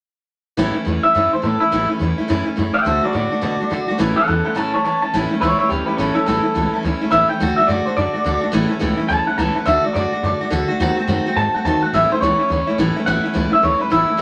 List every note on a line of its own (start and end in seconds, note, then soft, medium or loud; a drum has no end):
0.57 0.73 A1 loud
0.57 0.75 A2 medium
0.57 0.76 E3 loud
0.57 0.76 A3 loud
0.57 0.75 C#4 loud
0.57 0.73 E4 loud
0.74 0.85 A3 soft
0.74 0.86 C#4 soft
0.74 0.85 E4 medium
0.74 muted upright bass stroke medium
0.85 1.02 E2 medium
0.85 1.03 E3 medium
0.85 1.04 A3 medium
0.85 1.04 C#4 medium
0.85 1.02 E4 medium
1.03 1.15 A3 soft
1.03 1.15 C#4 soft
1.03 1.14 E4 medium
1.03 1.31 E5 medium
1.03 muted upright bass stroke medium
1.15 1.31 F#2 medium
1.15 1.33 A2 medium
1.15 1.33 E3 medium
1.15 1.33 A3 medium
1.15 1.33 C#4 medium
1.15 1.32 E4 medium
1.33 1.42 A3 soft
1.33 1.43 C#4 soft
1.33 1.43 E4 medium
1.33 1.43 C5 medium
1.33 muted upright bass stroke medium
1.42 1.59 A2 medium
1.42 1.60 E3 medium
1.42 1.61 A3 medium
1.42 1.61 C#4 medium
1.42 1.60 E4 medium
1.42 1.61 A4 medium
1.60 1.71 A3 soft
1.60 1.72 C#4 soft
1.60 1.88 E4 medium
1.60 1.72 E4 medium
1.60 muted upright bass stroke medium
1.72 1.88 A1 medium
1.72 1.90 A2 medium
1.72 1.90 E3 medium
1.72 1.90 A3 medium
1.72 1.90 C#4 loud
1.72 1.88 E4 loud
1.89 1.99 A3 soft
1.89 2.00 C#4 soft
1.89 2.00 E4 medium
1.89 muted upright bass stroke medium
1.99 2.16 E2 medium
1.99 2.18 E3 medium
1.99 2.18 A3 medium
1.99 2.18 C#4 medium
1.99 2.17 E4 medium
2.18 2.28 A3 soft
2.18 2.29 C#4 soft
2.18 2.29 E4 medium
2.18 muted upright bass stroke medium
2.28 2.45 F#2 loud
2.28 2.46 A2 medium
2.28 2.47 E3 medium
2.28 2.47 A3 medium
2.28 2.46 C#4 medium
2.28 2.44 E4 medium
2.45 2.55 A3 soft
2.45 2.56 C#4 medium
2.45 2.57 E4 medium
2.45 muted upright bass stroke medium
2.56 2.73 F#2 medium
2.56 2.74 E3 medium
2.56 2.75 A3 medium
2.56 2.74 C#4 medium
2.56 2.72 E4 medium
2.74 2.85 A3 soft
2.74 2.86 C#4 soft
2.74 2.85 E4 medium
2.74 2.86 E5 medium
2.74 2.86 G5 medium
2.74 muted upright bass stroke medium
2.85 3.01 D2 medium
2.85 3.03 D3 medium
2.85 3.04 A3 medium
2.85 3.04 D4 medium
2.85 3.02 F#4 medium
2.85 3.04 C5 medium
2.85 3.03 E5 medium
3.03 3.13 A3 soft
3.03 3.14 D4 soft
3.03 3.14 F#4 medium
3.03 3.13 D5 medium
3.03 muted upright bass stroke medium
3.13 3.30 A2 medium
3.13 3.31 D3 medium
3.13 3.32 A3 medium
3.13 3.31 D4 medium
3.13 3.30 F#4 medium
3.13 3.97 D5 loud
3.31 3.41 A3 soft
3.31 3.42 D4 medium
3.31 3.42 F#4 medium
3.31 muted upright bass stroke medium
3.41 3.58 B2 medium
3.41 3.60 D3 medium
3.41 3.60 A3 medium
3.41 3.60 D4 medium
3.41 3.59 F#4 medium
3.60 3.70 A3 soft
3.60 3.71 D4 medium
3.60 3.71 F#4 medium
3.60 muted upright bass stroke medium
3.70 3.88 D3 medium
3.70 3.87 D3 medium
3.70 3.89 A3 medium
3.70 3.89 D4 medium
3.70 3.87 F#4 medium
3.88 3.98 A3 soft
3.88 4.00 D4 medium
3.88 3.99 F#4 medium
3.88 muted upright bass stroke medium
3.98 4.16 A1 loud
3.98 4.17 A2 medium
3.98 4.17 E3 loud
3.98 4.17 A3 loud
3.98 4.17 C#4 loud
3.98 4.15 E4 medium
4.16 4.27 A3 soft
4.16 4.28 C#4 soft
4.16 4.27 E4 medium
4.16 4.27 A4 medium
4.16 4.27 F#5 loud
4.16 muted upright bass stroke medium
4.27 4.44 E2 medium
4.27 4.45 E3 medium
4.27 4.46 A3 medium
4.27 4.45 C#4 medium
4.27 4.43 E4 medium
4.27 4.44 A4 medium
4.27 4.45 F#5 medium
4.44 4.55 A3 soft
4.44 4.56 C#4 soft
4.44 4.56 E4 medium
4.44 4.55 A4 medium
4.44 4.56 F#5 medium
4.44 muted upright bass stroke medium
4.55 4.73 A2 medium
4.55 4.74 E3 medium
4.55 4.74 A3 medium
4.55 4.74 C#4 medium
4.55 4.72 E4 medium
4.55 4.73 C#5 medium
4.55 4.74 A5 medium
4.74 4.84 A3 soft
4.74 4.85 C#4 soft
4.74 4.84 E4 soft
4.74 4.84 C#5 medium
4.74 4.84 A5 medium
4.84 5.02 E3 medium
4.84 5.03 A3 medium
4.84 5.03 C#4 medium
4.84 5.01 E4 medium
4.84 5.02 C#5 medium
4.84 5.01 A5 medium
5.02 5.13 A3 soft
5.02 5.13 C#4 soft
5.02 5.13 E4 medium
5.02 5.13 A5 medium
5.14 5.25 A1 loud
5.14 5.31 A2 medium
5.14 5.31 E3 medium
5.14 5.32 A3 medium
5.14 5.31 C#4 loud
5.14 5.30 E4 loud
5.31 5.42 A3 medium
5.31 5.42 C#4 medium
5.31 5.42 E4 medium
5.31 muted upright bass stroke medium
5.41 5.53 C#2 medium
5.41 5.59 A2 medium
5.41 5.60 E3 medium
5.41 5.60 A3 medium
5.41 5.60 C#4 medium
5.41 5.57 E4 medium
5.41 5.58 E4 medium
5.41 5.58 C#5 medium
5.59 5.70 C#4 soft
5.59 5.69 E4 medium
5.59 5.70 E4 soft
5.59 5.70 C#5 medium
5.59 muted upright bass stroke medium
5.63 5.69 A3 soft
5.69 5.82 D2 medium
5.69 5.88 E3 medium
5.69 5.88 A3 medium
5.69 5.87 C#4 medium
5.69 5.86 E4 medium
5.69 5.84 G4 medium
5.69 5.85 B4 loud
5.85 5.98 C#4 soft
5.85 5.98 E4 medium
5.85 5.96 G4 medium
5.85 5.97 B4 medium
5.85 muted upright bass stroke medium
5.90 5.98 A3 soft
5.97 6.10 A1 medium
5.97 6.16 A2 medium
5.97 6.17 E3 medium
5.97 6.17 A3 medium
5.97 6.13 C#4 medium
5.97 6.16 C#4 medium
5.97 6.14 E4 medium
5.97 6.14 A4 medium
6.15 6.27 A3 soft
6.15 6.25 C#4 medium
6.15 6.27 C#4 soft
6.15 6.26 E4 medium
6.15 6.25 A4 medium
6.15 muted upright bass stroke medium
6.26 6.39 A1 loud
6.26 6.44 A2 medium
6.26 6.45 E3 medium
6.26 6.45 A3 medium
6.26 6.44 C#4 medium
6.26 6.42 E4 medium
6.26 6.81 A4 medium
6.43 6.54 A3 soft
6.43 6.55 C#4 medium
6.43 6.54 E4 medium
6.43 muted upright bass stroke medium
6.54 6.67 C#2 medium
6.54 6.72 A2 medium
6.54 6.73 E3 medium
6.54 6.73 A3 medium
6.54 6.73 C#4 medium
6.54 6.72 E4 medium
6.73 6.83 A3 soft
6.73 6.84 C#4 medium
6.73 6.83 E4 medium
6.73 muted upright bass stroke medium
6.83 6.95 D2 loud
6.83 7.01 E3 medium
6.83 7.02 A3 medium
6.83 7.01 C#4 medium
6.83 7.00 E4 medium
7.01 7.11 A3 medium
7.01 7.11 C#4 medium
7.01 7.11 E4 medium
7.01 muted upright bass stroke medium
7.11 7.24 A1 medium
7.11 7.29 A2 medium
7.11 7.29 E3 medium
7.11 7.30 A3 medium
7.11 7.30 C#4 medium
7.11 7.29 E4 medium
7.11 7.29 E5 loud
7.29 7.39 A3 soft
7.29 7.41 C#4 soft
7.29 7.40 E4 medium
7.29 7.56 G5 medium
7.29 muted upright bass stroke medium
7.40 7.52 D2 medium
7.40 7.58 D3 medium
7.40 7.58 A3 medium
7.40 7.58 D4 loud
7.40 7.56 F#4 loud
7.56 7.68 D4 soft
7.56 7.68 F#4 medium
7.56 7.67 E5 medium
7.56 muted upright bass stroke medium
7.61 7.68 A3 soft
7.67 7.80 F#2 medium
7.67 7.86 D3 medium
7.67 7.87 A3 medium
7.67 7.87 D4 medium
7.67 7.85 F#4 medium
7.67 7.86 D5 medium
7.86 7.97 D4 soft
7.86 7.97 F#4 medium
7.86 7.96 C5 loud
7.86 muted upright bass stroke medium
7.90 7.96 A3 soft
7.96 8.09 F#2 medium
7.96 8.14 D3 medium
7.96 8.15 A3 medium
7.96 8.14 D4 medium
7.96 8.12 F#4 medium
7.96 8.52 D5 loud
8.14 8.24 A3 soft
8.14 8.25 D4 medium
8.14 8.25 F#4 medium
8.14 muted upright bass stroke medium
8.24 8.37 D2 medium
8.24 8.42 D3 medium
8.24 8.43 A3 medium
8.24 8.42 D4 medium
8.24 8.40 F#4 medium
8.41 8.52 A3 soft
8.41 8.54 D4 soft
8.41 8.53 F#4 medium
8.41 muted upright bass stroke medium
8.52 8.65 A1 loud
8.52 8.70 A2 loud
8.52 8.71 E3 loud
8.52 8.71 A3 loud
8.52 8.70 C#4 loud
8.52 8.68 E4 loud
8.69 8.80 A3 medium
8.69 8.80 C#4 medium
8.69 8.81 E4 medium
8.69 muted upright bass stroke medium
8.80 8.93 C#2 medium
8.80 8.98 A2 medium
8.80 8.99 E3 medium
8.80 8.99 A3 loud
8.80 8.98 C#4 medium
8.80 8.96 E4 loud
8.97 9.08 A3 soft
8.97 9.09 C#4 medium
8.97 9.09 E4 medium
8.97 muted upright bass stroke medium
9.09 9.21 D2 medium
9.09 9.27 E3 medium
9.09 9.28 A3 medium
9.09 9.28 C#4 medium
9.09 9.26 E4 medium
9.09 9.27 A5 loud
9.27 9.38 A3 soft
9.27 9.38 C#4 soft
9.27 9.38 E4 soft
9.27 9.38 F#5 medium
9.27 muted upright bass stroke medium
9.38 9.50 C#2 medium
9.38 9.56 A2 medium
9.38 9.56 E3 medium
9.38 9.56 A3 medium
9.38 9.56 C#4 medium
9.38 9.54 E4 medium
9.38 9.56 A5 medium
9.55 9.65 A3 soft
9.55 9.67 C#4 soft
9.55 9.66 E4 medium
9.55 9.66 F#5 medium
9.55 muted upright bass stroke medium
9.66 9.78 D2 loud
9.66 9.84 D3 medium
9.66 9.84 A3 medium
9.66 9.85 D4 medium
9.66 9.83 F#4 medium
9.66 9.85 E5 medium
9.84 9.94 A3 soft
9.84 9.95 D4 soft
9.84 9.95 F#4 medium
9.84 9.93 D5 medium
9.84 muted upright bass stroke medium
9.94 10.06 F#2 medium
9.94 10.12 D3 medium
9.94 10.13 A3 medium
9.94 10.13 D4 medium
9.94 10.12 F#4 medium
9.94 10.50 D5 medium
10.12 10.23 A3 soft
10.12 10.24 D4 soft
10.12 10.23 F#4 medium
10.12 muted upright bass stroke medium
10.23 10.34 F#2 medium
10.23 10.41 D3 medium
10.23 10.42 A3 medium
10.23 10.41 D4 medium
10.23 10.40 F#4 medium
10.40 10.50 A3 soft
10.40 10.51 D4 medium
10.40 10.51 F#4 medium
10.40 muted upright bass stroke medium
10.50 10.63 D2 medium
10.50 10.69 D3 loud
10.50 10.69 A3 medium
10.50 10.69 D4 medium
10.50 10.67 F#4 loud
10.68 10.79 A3 medium
10.68 10.80 D4 medium
10.68 10.79 F#4 medium
10.68 muted upright bass stroke medium
10.80 10.91 D#2 medium
10.80 10.98 D#3 loud
10.80 10.98 A3 loud
10.80 10.98 C4 loud
10.80 10.96 F#4 loud
10.97 11.07 A3 medium
10.97 11.08 C4 medium
10.97 11.08 F#4 medium
10.97 muted upright bass stroke medium
11.07 11.19 F#2 medium
11.07 11.26 D#3 medium
11.07 11.26 A3 medium
11.07 11.26 C4 loud
11.07 11.25 F#4 medium
11.26 11.36 A3 soft
11.26 11.38 C4 medium
11.26 11.37 F#4 medium
11.26 muted upright bass stroke medium
11.36 11.48 G#2 loud
11.36 11.55 D#3 medium
11.36 11.55 A3 medium
11.36 11.55 C4 medium
11.36 11.54 F#4 medium
11.36 11.54 A5 loud
11.54 11.65 A3 soft
11.54 11.66 C4 soft
11.54 11.65 F#4 medium
11.54 11.65 F#5 medium
11.54 muted upright bass stroke medium
11.65 11.76 D#2 loud
11.65 11.83 D#3 medium
11.65 11.83 A3 medium
11.65 11.83 C4 medium
11.65 11.81 F#4 medium
11.65 11.82 A5 medium
11.82 11.93 A3 soft
11.82 11.94 C4 soft
11.82 11.93 F#4 medium
11.82 11.93 F#5 medium
11.82 muted upright bass stroke medium
11.93 12.05 A1 loud
11.93 12.11 A2 loud
11.93 12.12 E3 medium
11.93 12.12 A3 medium
11.93 12.12 C#4 medium
11.93 12.11 E4 medium
11.93 12.11 E5 medium
12.11 12.22 A3 soft
12.11 12.23 C#4 medium
12.11 12.22 E4 medium
12.11 12.21 C5 loud
12.11 muted upright bass stroke medium
12.21 12.33 C#2 loud
12.21 12.40 A2 medium
12.21 12.40 E3 medium
12.21 12.40 A3 medium
12.21 12.40 C#4 medium
12.21 12.38 E4 medium
12.21 12.76 C#5 loud
12.39 12.49 A3 soft
12.39 12.50 C#4 medium
12.39 12.50 E4 medium
12.39 muted upright bass stroke medium
12.49 12.62 D2 loud
12.49 12.67 E3 medium
12.49 12.68 A3 medium
12.49 12.68 C#4 medium
12.49 12.66 E4 medium
12.67 12.78 A3 soft
12.67 12.79 C#4 soft
12.67 12.78 E4 medium
12.67 muted upright bass stroke medium
12.78 12.90 A1 loud
12.78 12.96 A2 medium
12.78 12.97 E3 medium
12.78 12.97 A3 medium
12.78 12.97 C#4 loud
12.78 12.95 E4 loud
12.96 13.06 A3 medium
12.96 13.06 C#4 medium
12.96 13.07 E4 medium
12.96 muted upright bass stroke medium
13.06 13.19 A1 loud
13.06 13.25 A2 medium
13.06 13.25 E3 medium
13.06 13.25 A3 loud
13.06 13.24 C#4 medium
13.06 13.22 E4 loud
13.06 13.51 F#5 loud
13.23 13.34 A3 soft
13.23 13.34 C#4 medium
13.23 13.34 E4 medium
13.23 muted upright bass stroke medium
13.33 13.47 C#2 medium
13.33 13.52 A2 medium
13.33 13.52 E3 medium
13.33 13.53 A3 medium
13.33 13.52 C#4 medium
13.33 13.50 E4 medium
13.52 13.62 A3 soft
13.52 13.63 C#4 soft
13.52 13.63 E4 medium
13.52 13.63 E5 medium
13.52 muted upright bass stroke medium
13.62 13.75 D2 medium
13.62 13.81 E3 medium
13.62 13.81 A3 medium
13.62 13.80 C#4 medium
13.62 13.78 E4 medium
13.62 13.81 C#5 loud
13.80 13.90 A3 soft
13.80 13.91 C#4 soft
13.80 13.91 E4 medium
13.80 13.91 B4 medium
13.80 muted upright bass stroke medium
13.90 14.04 A1 medium
13.90 14.09 A2 medium
13.90 14.09 E3 medium
13.90 14.09 A3 medium
13.90 14.08 C#4 medium
13.90 14.22 E4 loud
13.90 14.07 E4 medium
14.08 14.18 A3 soft
14.08 14.19 C#4 soft
14.08 14.18 E4 medium
14.08 muted upright bass stroke medium
14.17 14.22 E2 medium
14.17 14.22 B2 medium
14.17 14.22 E3 medium